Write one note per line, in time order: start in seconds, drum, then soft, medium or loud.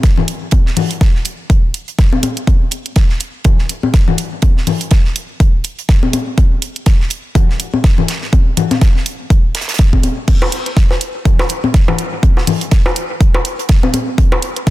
0.03 kick loud
0.03 snare loud
0.03 closed hi-hat medium
0.17 low conga medium
0.28 closed hi-hat medium
0.51 kick loud
0.51 closed hi-hat medium
0.51 high conga medium
0.66 snare soft
0.77 closed hi-hat medium
0.77 open hi-hat medium
0.77 low conga medium
0.91 closed hi-hat soft
1.01 kick loud
1.01 snare loud
1.01 closed hi-hat medium
1.15 snare soft
1.25 closed hi-hat medium
1.50 kick loud
1.50 closed hi-hat medium
1.74 closed hi-hat medium
1.88 closed hi-hat soft
1.99 kick loud
1.99 snare loud
1.99 closed hi-hat medium
2.13 high conga medium
2.23 closed hi-hat medium
2.23 high conga medium
2.37 closed hi-hat soft
2.47 kick loud
2.47 closed hi-hat medium
2.47 high conga medium
2.71 closed hi-hat medium
2.86 closed hi-hat soft
2.96 kick loud
2.96 snare loud
2.96 closed hi-hat medium
3.10 snare medium
3.20 closed hi-hat medium
3.44 kick loud
3.44 closed hi-hat medium
3.44 low conga medium
3.58 snare soft
3.69 closed hi-hat medium
3.83 high conga medium
3.94 kick loud
3.94 snare loud
3.94 closed hi-hat medium
4.08 low conga medium
4.18 closed hi-hat medium
4.42 kick loud
4.42 closed hi-hat medium
4.42 high conga medium
4.57 snare soft
4.67 closed hi-hat medium
4.67 open hi-hat medium
4.67 low conga medium
4.81 closed hi-hat soft
4.91 kick loud
4.91 snare loud
4.91 closed hi-hat medium
5.05 snare soft
5.16 closed hi-hat medium
5.40 kick loud
5.40 closed hi-hat medium
5.64 closed hi-hat medium
5.79 closed hi-hat soft
5.89 kick loud
5.89 snare loud
5.89 closed hi-hat medium
6.03 high conga medium
6.13 closed hi-hat medium
6.13 high conga medium
6.38 kick loud
6.38 closed hi-hat medium
6.38 high conga soft
6.62 closed hi-hat medium
6.76 closed hi-hat soft
6.86 kick loud
6.86 snare loud
6.86 closed hi-hat medium
7.00 snare medium
7.10 closed hi-hat medium
7.35 kick loud
7.35 closed hi-hat medium
7.35 low conga medium
7.49 snare soft
7.60 closed hi-hat medium
7.74 high conga medium
7.84 kick loud
7.84 snare loud
7.84 closed hi-hat medium
7.98 low conga medium
8.08 snare medium
8.08 closed hi-hat medium
8.22 snare soft
8.33 kick loud
8.33 closed hi-hat medium
8.33 high conga medium
8.57 closed hi-hat medium
8.57 low conga medium
8.71 snare soft
8.71 closed hi-hat soft
8.71 high conga medium
8.81 kick loud
8.81 snare loud
8.81 closed hi-hat medium
8.96 snare soft
9.06 closed hi-hat medium
9.30 kick loud
9.30 closed hi-hat medium
9.55 snare medium
9.55 closed hi-hat medium
9.61 snare medium
9.61 closed hi-hat medium
9.68 snare medium
9.68 closed hi-hat medium
9.74 snare medium
9.74 closed hi-hat medium
9.79 kick loud
9.79 closed hi-hat medium
9.93 kick medium
9.93 high conga medium
10.03 closed hi-hat medium
10.03 high conga medium
10.28 kick loud
10.28 closed hi-hat medium
10.28 crash medium
10.28 high conga medium
10.42 high bongo medium
10.52 closed hi-hat medium
10.66 closed hi-hat soft
10.77 kick loud
10.77 snare loud
10.77 closed hi-hat medium
10.91 snare medium
10.91 high bongo soft
11.01 closed hi-hat medium
11.25 kick loud
11.25 closed hi-hat medium
11.25 low conga medium
11.39 snare soft
11.39 high bongo medium
11.49 closed hi-hat medium
11.64 high conga medium
11.74 kick loud
11.74 snare loud
11.74 closed hi-hat medium
11.88 high bongo medium
11.88 low conga medium
11.99 closed hi-hat medium
12.23 kick loud
12.23 closed hi-hat medium
12.23 high conga medium
12.37 snare soft
12.37 high bongo soft
12.47 closed hi-hat loud
12.47 open hi-hat medium
12.47 low conga medium
12.61 closed hi-hat soft
12.71 kick loud
12.71 snare loud
12.71 closed hi-hat medium
12.86 snare soft
12.86 high bongo medium
12.96 closed hi-hat medium
13.21 kick loud
13.21 closed hi-hat medium
13.34 high bongo medium
13.45 closed hi-hat medium
13.59 closed hi-hat soft
13.69 kick loud
13.69 snare loud
13.69 closed hi-hat medium
13.83 high bongo soft
13.83 high conga medium
13.93 closed hi-hat medium
13.93 high conga medium
14.18 kick loud
14.18 closed hi-hat medium
14.18 high conga medium
14.32 high bongo medium
14.42 closed hi-hat medium
14.56 closed hi-hat soft
14.67 kick loud